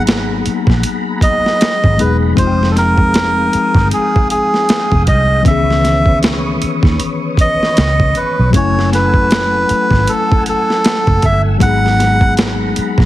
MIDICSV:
0, 0, Header, 1, 7, 480
1, 0, Start_track
1, 0, Tempo, 769231
1, 1480, Time_signature, 4, 2, 24, 8
1, 8146, End_track
2, 0, Start_track
2, 0, Title_t, "Tonewheel organ"
2, 0, Program_c, 0, 16
2, 0, Note_on_c, 0, 68, 63
2, 0, Note_on_c, 0, 78, 58
2, 0, Note_on_c, 0, 82, 58
2, 0, Note_on_c, 0, 83, 70
2, 1456, Note_off_c, 0, 78, 0
2, 1459, Note_off_c, 0, 82, 0
2, 1459, Note_off_c, 0, 83, 0
2, 1479, Note_on_c, 0, 77, 64
2, 1479, Note_on_c, 0, 79, 64
2, 1479, Note_on_c, 0, 87, 73
2, 3375, Note_off_c, 0, 68, 0
2, 3380, Note_off_c, 0, 77, 0
2, 3380, Note_off_c, 0, 79, 0
2, 3380, Note_off_c, 0, 87, 0
2, 3408, Note_on_c, 0, 71, 70
2, 3408, Note_on_c, 0, 87, 68
2, 3409, Note_on_c, 0, 73, 57
2, 3409, Note_on_c, 0, 85, 57
2, 5304, Note_off_c, 0, 87, 0
2, 5305, Note_off_c, 0, 71, 0
2, 5305, Note_off_c, 0, 73, 0
2, 5305, Note_off_c, 0, 85, 0
2, 5319, Note_on_c, 0, 78, 56
2, 5322, Note_on_c, 0, 88, 71
2, 5323, Note_on_c, 0, 69, 64
2, 5324, Note_on_c, 0, 80, 57
2, 7222, Note_off_c, 0, 69, 0
2, 7222, Note_off_c, 0, 80, 0
2, 7222, Note_off_c, 0, 88, 0
2, 7238, Note_on_c, 0, 68, 61
2, 7239, Note_on_c, 0, 82, 62
2, 7242, Note_on_c, 0, 83, 70
2, 8146, Note_off_c, 0, 68, 0
2, 8146, Note_off_c, 0, 78, 0
2, 8146, Note_off_c, 0, 82, 0
2, 8146, Note_off_c, 0, 83, 0
2, 8146, End_track
3, 0, Start_track
3, 0, Title_t, "Melodica"
3, 0, Program_c, 1, 22
3, 769, Note_on_c, 1, 75, 97
3, 1248, Note_on_c, 1, 71, 83
3, 1259, Note_off_c, 1, 75, 0
3, 1354, Note_off_c, 1, 71, 0
3, 1485, Note_on_c, 1, 72, 93
3, 1691, Note_on_c, 1, 69, 63
3, 1693, Note_off_c, 1, 72, 0
3, 1723, Note_off_c, 1, 69, 0
3, 1734, Note_on_c, 1, 70, 108
3, 2422, Note_off_c, 1, 70, 0
3, 2454, Note_on_c, 1, 68, 97
3, 2671, Note_off_c, 1, 68, 0
3, 2687, Note_on_c, 1, 68, 98
3, 3138, Note_off_c, 1, 68, 0
3, 3172, Note_on_c, 1, 75, 105
3, 3389, Note_off_c, 1, 75, 0
3, 3414, Note_on_c, 1, 76, 99
3, 3862, Note_off_c, 1, 76, 0
3, 4623, Note_on_c, 1, 75, 95
3, 5097, Note_on_c, 1, 71, 78
3, 5105, Note_off_c, 1, 75, 0
3, 5312, Note_off_c, 1, 71, 0
3, 5338, Note_on_c, 1, 73, 86
3, 5553, Note_off_c, 1, 73, 0
3, 5581, Note_on_c, 1, 71, 105
3, 6298, Note_on_c, 1, 69, 97
3, 6311, Note_off_c, 1, 71, 0
3, 6512, Note_off_c, 1, 69, 0
3, 6544, Note_on_c, 1, 69, 96
3, 7021, Note_on_c, 1, 76, 101
3, 7026, Note_off_c, 1, 69, 0
3, 7124, Note_off_c, 1, 76, 0
3, 7253, Note_on_c, 1, 78, 113
3, 7701, Note_off_c, 1, 78, 0
3, 8146, End_track
4, 0, Start_track
4, 0, Title_t, "Tine electric piano"
4, 0, Program_c, 2, 4
4, 0, Control_c, 2, 64, 127
4, 0, Note_on_c, 2, 54, 59
4, 0, Note_on_c, 2, 58, 54
4, 0, Note_on_c, 2, 59, 54
4, 0, Note_on_c, 2, 63, 58
4, 0, Note_on_c, 2, 68, 64
4, 1205, Note_off_c, 2, 54, 0
4, 1211, Note_off_c, 2, 58, 0
4, 1218, Note_off_c, 2, 59, 0
4, 1225, Note_off_c, 2, 63, 0
4, 1230, Note_off_c, 2, 68, 0
4, 1230, Note_on_c, 2, 54, 47
4, 1236, Note_on_c, 2, 56, 42
4, 1241, Note_on_c, 2, 59, 47
4, 1247, Note_on_c, 2, 63, 47
4, 1252, Note_on_c, 2, 68, 55
4, 1454, Note_on_c, 2, 53, 61
4, 1459, Note_off_c, 2, 56, 0
4, 1467, Note_on_c, 2, 56, 55
4, 1475, Note_off_c, 2, 54, 0
4, 1476, Note_on_c, 2, 60, 61
4, 1481, Note_off_c, 2, 59, 0
4, 1482, Note_off_c, 2, 63, 0
4, 1486, Note_off_c, 2, 68, 0
4, 1488, Control_c, 2, 64, 0
4, 1489, Note_on_c, 2, 63, 54
4, 1500, Note_on_c, 2, 65, 53
4, 1538, Note_off_c, 2, 65, 0
4, 1542, Note_on_c, 2, 79, 62
4, 1595, Control_c, 2, 64, 127
4, 3362, Note_off_c, 2, 53, 0
4, 3368, Note_off_c, 2, 56, 0
4, 3373, Note_off_c, 2, 60, 0
4, 3380, Note_off_c, 2, 63, 0
4, 3387, Note_on_c, 2, 52, 61
4, 3401, Note_on_c, 2, 59, 51
4, 3406, Note_off_c, 2, 79, 0
4, 3408, Control_c, 2, 64, 0
4, 3410, Note_on_c, 2, 61, 56
4, 3423, Note_on_c, 2, 51, 55
4, 3436, Note_on_c, 2, 68, 67
4, 3525, Control_c, 2, 64, 127
4, 5288, Note_off_c, 2, 52, 0
4, 5295, Note_off_c, 2, 59, 0
4, 5300, Note_off_c, 2, 61, 0
4, 5306, Note_off_c, 2, 51, 0
4, 5307, Note_on_c, 2, 54, 57
4, 5313, Note_off_c, 2, 68, 0
4, 5319, Note_on_c, 2, 57, 52
4, 5326, Control_c, 2, 64, 0
4, 5330, Note_on_c, 2, 61, 52
4, 5342, Note_on_c, 2, 64, 54
4, 5356, Note_on_c, 2, 80, 60
4, 5431, Control_c, 2, 64, 127
4, 7208, Note_off_c, 2, 54, 0
4, 7214, Note_off_c, 2, 57, 0
4, 7220, Note_off_c, 2, 61, 0
4, 7226, Note_off_c, 2, 64, 0
4, 7227, Note_on_c, 2, 54, 62
4, 7233, Note_off_c, 2, 80, 0
4, 7237, Note_on_c, 2, 56, 50
4, 7249, Control_c, 2, 64, 0
4, 7252, Note_on_c, 2, 59, 51
4, 7260, Note_on_c, 2, 63, 53
4, 7276, Note_on_c, 2, 68, 69
4, 7347, Control_c, 2, 64, 127
4, 8146, Note_off_c, 2, 54, 0
4, 8146, Note_off_c, 2, 56, 0
4, 8146, Note_off_c, 2, 59, 0
4, 8146, Note_off_c, 2, 63, 0
4, 8146, Note_off_c, 2, 68, 0
4, 8146, End_track
5, 0, Start_track
5, 0, Title_t, "Fingered electric bass"
5, 0, Program_c, 3, 33
5, 0, Note_on_c, 3, 32, 103
5, 256, Note_off_c, 3, 32, 0
5, 423, Note_on_c, 3, 34, 80
5, 511, Note_off_c, 3, 34, 0
5, 1152, Note_on_c, 3, 32, 86
5, 1236, Note_off_c, 3, 32, 0
5, 1256, Note_on_c, 3, 28, 80
5, 1468, Note_off_c, 3, 28, 0
5, 1483, Note_on_c, 3, 29, 94
5, 2176, Note_off_c, 3, 29, 0
5, 2343, Note_on_c, 3, 31, 84
5, 2432, Note_off_c, 3, 31, 0
5, 3071, Note_on_c, 3, 29, 85
5, 3156, Note_off_c, 3, 29, 0
5, 3174, Note_on_c, 3, 36, 79
5, 3387, Note_off_c, 3, 36, 0
5, 3407, Note_on_c, 3, 37, 108
5, 4098, Note_off_c, 3, 37, 0
5, 4267, Note_on_c, 3, 39, 82
5, 4354, Note_off_c, 3, 39, 0
5, 4855, Note_on_c, 3, 37, 97
5, 5068, Note_off_c, 3, 37, 0
5, 5236, Note_on_c, 3, 35, 90
5, 5318, Note_off_c, 3, 35, 0
5, 5329, Note_on_c, 3, 30, 94
5, 6019, Note_off_c, 3, 30, 0
5, 6185, Note_on_c, 3, 32, 85
5, 6273, Note_off_c, 3, 32, 0
5, 6912, Note_on_c, 3, 30, 88
5, 6997, Note_off_c, 3, 30, 0
5, 7012, Note_on_c, 3, 31, 90
5, 7226, Note_off_c, 3, 31, 0
5, 7245, Note_on_c, 3, 32, 118
5, 7937, Note_off_c, 3, 32, 0
5, 8103, Note_on_c, 3, 34, 86
5, 8146, Note_off_c, 3, 34, 0
5, 8146, End_track
6, 0, Start_track
6, 0, Title_t, "Muted fingered electric bass strokes"
6, 291, Note_on_c, 9, 29, 44
6, 353, Note_off_c, 9, 29, 0
6, 2212, Note_on_c, 9, 29, 47
6, 2274, Note_off_c, 9, 29, 0
6, 4138, Note_on_c, 9, 29, 47
6, 4200, Note_off_c, 9, 29, 0
6, 6055, Note_on_c, 9, 29, 49
6, 6117, Note_off_c, 9, 29, 0
6, 7975, Note_on_c, 9, 29, 44
6, 8037, Note_off_c, 9, 29, 0
6, 8146, End_track
7, 0, Start_track
7, 0, Title_t, "Drums"
7, 45, Note_on_c, 9, 42, 67
7, 53, Note_on_c, 9, 38, 105
7, 107, Note_off_c, 9, 42, 0
7, 116, Note_off_c, 9, 38, 0
7, 285, Note_on_c, 9, 42, 62
7, 347, Note_off_c, 9, 42, 0
7, 417, Note_on_c, 9, 36, 88
7, 435, Note_on_c, 9, 38, 32
7, 480, Note_off_c, 9, 36, 0
7, 497, Note_off_c, 9, 38, 0
7, 521, Note_on_c, 9, 42, 90
7, 583, Note_off_c, 9, 42, 0
7, 757, Note_on_c, 9, 36, 78
7, 763, Note_on_c, 9, 42, 66
7, 819, Note_off_c, 9, 36, 0
7, 826, Note_off_c, 9, 42, 0
7, 913, Note_on_c, 9, 38, 35
7, 975, Note_off_c, 9, 38, 0
7, 1004, Note_on_c, 9, 42, 92
7, 1011, Note_on_c, 9, 38, 103
7, 1067, Note_off_c, 9, 42, 0
7, 1073, Note_off_c, 9, 38, 0
7, 1146, Note_on_c, 9, 36, 89
7, 1209, Note_off_c, 9, 36, 0
7, 1243, Note_on_c, 9, 42, 63
7, 1305, Note_off_c, 9, 42, 0
7, 1478, Note_on_c, 9, 36, 109
7, 1486, Note_on_c, 9, 42, 84
7, 1541, Note_off_c, 9, 36, 0
7, 1549, Note_off_c, 9, 42, 0
7, 1640, Note_on_c, 9, 38, 38
7, 1703, Note_off_c, 9, 38, 0
7, 1724, Note_on_c, 9, 38, 38
7, 1727, Note_on_c, 9, 42, 66
7, 1787, Note_off_c, 9, 38, 0
7, 1789, Note_off_c, 9, 42, 0
7, 1857, Note_on_c, 9, 36, 86
7, 1919, Note_off_c, 9, 36, 0
7, 1960, Note_on_c, 9, 42, 66
7, 1969, Note_on_c, 9, 38, 97
7, 2023, Note_off_c, 9, 42, 0
7, 2031, Note_off_c, 9, 38, 0
7, 2204, Note_on_c, 9, 42, 73
7, 2266, Note_off_c, 9, 42, 0
7, 2337, Note_on_c, 9, 36, 94
7, 2351, Note_on_c, 9, 38, 29
7, 2400, Note_off_c, 9, 36, 0
7, 2413, Note_off_c, 9, 38, 0
7, 2443, Note_on_c, 9, 42, 83
7, 2505, Note_off_c, 9, 42, 0
7, 2595, Note_on_c, 9, 36, 95
7, 2657, Note_off_c, 9, 36, 0
7, 2685, Note_on_c, 9, 42, 63
7, 2747, Note_off_c, 9, 42, 0
7, 2833, Note_on_c, 9, 38, 30
7, 2896, Note_off_c, 9, 38, 0
7, 2926, Note_on_c, 9, 42, 89
7, 2932, Note_on_c, 9, 38, 111
7, 2988, Note_off_c, 9, 42, 0
7, 2995, Note_off_c, 9, 38, 0
7, 3068, Note_on_c, 9, 36, 90
7, 3130, Note_off_c, 9, 36, 0
7, 3163, Note_on_c, 9, 42, 59
7, 3167, Note_on_c, 9, 36, 102
7, 3226, Note_off_c, 9, 42, 0
7, 3229, Note_off_c, 9, 36, 0
7, 3401, Note_on_c, 9, 36, 108
7, 3405, Note_on_c, 9, 42, 82
7, 3463, Note_off_c, 9, 36, 0
7, 3468, Note_off_c, 9, 42, 0
7, 3560, Note_on_c, 9, 38, 41
7, 3622, Note_off_c, 9, 38, 0
7, 3647, Note_on_c, 9, 38, 39
7, 3649, Note_on_c, 9, 42, 67
7, 3709, Note_off_c, 9, 38, 0
7, 3712, Note_off_c, 9, 42, 0
7, 3779, Note_on_c, 9, 36, 83
7, 3842, Note_off_c, 9, 36, 0
7, 3885, Note_on_c, 9, 42, 67
7, 3894, Note_on_c, 9, 38, 113
7, 3948, Note_off_c, 9, 42, 0
7, 3956, Note_off_c, 9, 38, 0
7, 4129, Note_on_c, 9, 42, 66
7, 4191, Note_off_c, 9, 42, 0
7, 4261, Note_on_c, 9, 36, 90
7, 4274, Note_on_c, 9, 38, 32
7, 4323, Note_off_c, 9, 36, 0
7, 4337, Note_off_c, 9, 38, 0
7, 4366, Note_on_c, 9, 42, 82
7, 4428, Note_off_c, 9, 42, 0
7, 4601, Note_on_c, 9, 36, 83
7, 4610, Note_on_c, 9, 42, 60
7, 4664, Note_off_c, 9, 36, 0
7, 4672, Note_off_c, 9, 42, 0
7, 4760, Note_on_c, 9, 38, 33
7, 4823, Note_off_c, 9, 38, 0
7, 4848, Note_on_c, 9, 42, 82
7, 4855, Note_on_c, 9, 38, 106
7, 4910, Note_off_c, 9, 42, 0
7, 4917, Note_off_c, 9, 38, 0
7, 4990, Note_on_c, 9, 36, 94
7, 5053, Note_off_c, 9, 36, 0
7, 5086, Note_on_c, 9, 42, 57
7, 5148, Note_off_c, 9, 42, 0
7, 5323, Note_on_c, 9, 36, 111
7, 5330, Note_on_c, 9, 42, 82
7, 5386, Note_off_c, 9, 36, 0
7, 5393, Note_off_c, 9, 42, 0
7, 5484, Note_on_c, 9, 38, 41
7, 5546, Note_off_c, 9, 38, 0
7, 5572, Note_on_c, 9, 38, 38
7, 5574, Note_on_c, 9, 42, 63
7, 5634, Note_off_c, 9, 38, 0
7, 5637, Note_off_c, 9, 42, 0
7, 5702, Note_on_c, 9, 36, 74
7, 5764, Note_off_c, 9, 36, 0
7, 5808, Note_on_c, 9, 42, 68
7, 5816, Note_on_c, 9, 38, 112
7, 5870, Note_off_c, 9, 42, 0
7, 5878, Note_off_c, 9, 38, 0
7, 6048, Note_on_c, 9, 42, 69
7, 6110, Note_off_c, 9, 42, 0
7, 6181, Note_on_c, 9, 36, 86
7, 6197, Note_on_c, 9, 38, 31
7, 6243, Note_off_c, 9, 36, 0
7, 6259, Note_off_c, 9, 38, 0
7, 6287, Note_on_c, 9, 42, 92
7, 6349, Note_off_c, 9, 42, 0
7, 6437, Note_on_c, 9, 36, 94
7, 6500, Note_off_c, 9, 36, 0
7, 6527, Note_on_c, 9, 42, 66
7, 6590, Note_off_c, 9, 42, 0
7, 6679, Note_on_c, 9, 38, 32
7, 6741, Note_off_c, 9, 38, 0
7, 6767, Note_on_c, 9, 42, 87
7, 6774, Note_on_c, 9, 38, 102
7, 6830, Note_off_c, 9, 42, 0
7, 6837, Note_off_c, 9, 38, 0
7, 6909, Note_on_c, 9, 36, 90
7, 6971, Note_off_c, 9, 36, 0
7, 7004, Note_on_c, 9, 42, 58
7, 7007, Note_on_c, 9, 36, 87
7, 7066, Note_off_c, 9, 42, 0
7, 7070, Note_off_c, 9, 36, 0
7, 7241, Note_on_c, 9, 36, 102
7, 7246, Note_on_c, 9, 42, 87
7, 7303, Note_off_c, 9, 36, 0
7, 7309, Note_off_c, 9, 42, 0
7, 7400, Note_on_c, 9, 38, 40
7, 7463, Note_off_c, 9, 38, 0
7, 7487, Note_on_c, 9, 38, 37
7, 7490, Note_on_c, 9, 42, 64
7, 7549, Note_off_c, 9, 38, 0
7, 7552, Note_off_c, 9, 42, 0
7, 7619, Note_on_c, 9, 36, 85
7, 7681, Note_off_c, 9, 36, 0
7, 7721, Note_on_c, 9, 42, 68
7, 7729, Note_on_c, 9, 38, 100
7, 7783, Note_off_c, 9, 42, 0
7, 7791, Note_off_c, 9, 38, 0
7, 7963, Note_on_c, 9, 42, 75
7, 8026, Note_off_c, 9, 42, 0
7, 8098, Note_on_c, 9, 36, 92
7, 8112, Note_on_c, 9, 38, 33
7, 8146, Note_off_c, 9, 36, 0
7, 8146, Note_off_c, 9, 38, 0
7, 8146, End_track
0, 0, End_of_file